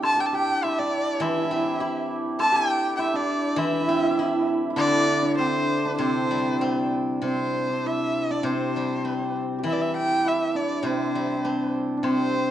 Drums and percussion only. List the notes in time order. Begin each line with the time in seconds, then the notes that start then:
0.03 high woodblock
0.63 high woodblock
1.22 high woodblock
2.40 high woodblock
2.99 high woodblock
3.58 high woodblock
4.78 high woodblock
5.39 low woodblock
6.00 high woodblock
6.62 low woodblock
12.04 high woodblock